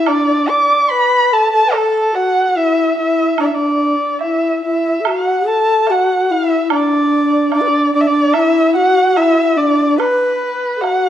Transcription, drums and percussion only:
0.06 high woodblock
1.72 high woodblock
3.38 high woodblock
4.21 low woodblock
5.05 high woodblock
5.87 high woodblock, low woodblock
6.70 high woodblock
7.52 high woodblock, low woodblock
8.34 high woodblock
9.16 high woodblock, low woodblock
10.00 high woodblock
10.84 high woodblock, low woodblock

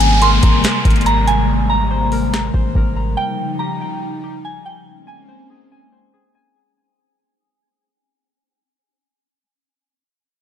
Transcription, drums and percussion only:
0.01 closed hi-hat
0.22 closed hi-hat
0.43 kick, closed hi-hat
0.64 snare, closed hi-hat
0.85 kick, closed hi-hat
0.90 closed hi-hat
0.96 closed hi-hat
1.01 closed hi-hat
1.06 closed hi-hat
1.28 closed hi-hat
2.12 open hi-hat
2.34 snare
2.54 kick
2.75 kick

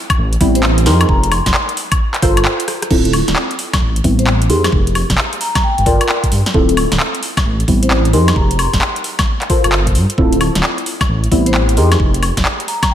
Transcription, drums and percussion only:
0.10 kick, closed hi-hat, high woodblock
0.33 closed hi-hat
0.41 kick, open hi-hat
0.55 closed hi-hat
0.63 clap
0.78 closed hi-hat
0.86 snare, open hi-hat
1.01 closed hi-hat, high woodblock
1.09 kick
1.24 closed hi-hat
1.32 open hi-hat, high woodblock
1.46 kick, snare, closed hi-hat
1.54 clap
1.69 closed hi-hat
1.77 open hi-hat
1.92 kick, closed hi-hat, high woodblock
2.14 clap, closed hi-hat
2.22 kick, open hi-hat
2.37 closed hi-hat, high woodblock
2.45 clap
2.60 closed hi-hat
2.68 cross-stick, open hi-hat
2.82 cross-stick, closed hi-hat
2.91 kick, crash
3.05 closed hi-hat
3.13 open hi-hat, high woodblock
3.28 snare, closed hi-hat
3.36 clap
3.51 closed hi-hat
3.59 open hi-hat
3.73 kick, snare, closed hi-hat, high woodblock
3.96 closed hi-hat
4.04 kick, open hi-hat
4.19 closed hi-hat
4.27 clap
4.42 closed hi-hat
4.50 open hi-hat
4.64 snare, closed hi-hat, high woodblock
4.72 kick
4.87 closed hi-hat
4.95 open hi-hat, high woodblock
5.10 kick, snare, closed hi-hat
5.18 clap
5.33 closed hi-hat
5.41 open hi-hat
5.55 kick, snare, closed hi-hat, high woodblock
5.78 closed hi-hat
5.86 kick, open hi-hat
6.01 closed hi-hat, high woodblock
6.09 clap
6.23 kick, closed hi-hat
6.32 open hi-hat
6.46 snare, closed hi-hat
6.54 kick
6.69 closed hi-hat
6.77 open hi-hat, high woodblock
6.92 snare, closed hi-hat
7.00 clap
7.15 closed hi-hat
7.23 open hi-hat
7.37 kick, snare, closed hi-hat, high woodblock
7.60 closed hi-hat
7.68 kick, open hi-hat
7.83 closed hi-hat
7.91 clap
8.05 closed hi-hat
8.13 open hi-hat
8.28 snare, closed hi-hat, high woodblock
8.36 kick
8.51 closed hi-hat
8.59 open hi-hat, high woodblock
8.73 kick, snare, closed hi-hat
8.81 clap
8.96 closed hi-hat
9.04 open hi-hat
9.19 kick, snare, closed hi-hat, high woodblock
9.42 clap, closed hi-hat
9.50 kick, open hi-hat
9.64 closed hi-hat, high woodblock
9.72 clap
9.87 kick, closed hi-hat
9.95 open hi-hat
10.10 closed hi-hat
10.18 kick
10.33 closed hi-hat
10.41 open hi-hat, high woodblock
10.55 snare, closed hi-hat
10.63 clap
10.78 closed hi-hat
10.86 open hi-hat
11.01 kick, snare, closed hi-hat, high woodblock
11.24 closed hi-hat
11.32 kick, open hi-hat
11.46 closed hi-hat
11.54 clap
11.69 closed hi-hat
11.77 open hi-hat
11.92 snare, closed hi-hat, high woodblock
12.00 kick
12.14 closed hi-hat
12.23 open hi-hat, high woodblock
12.37 kick, snare, closed hi-hat
12.45 clap
12.60 closed hi-hat
12.68 open hi-hat
12.83 kick, snare, closed hi-hat, high woodblock

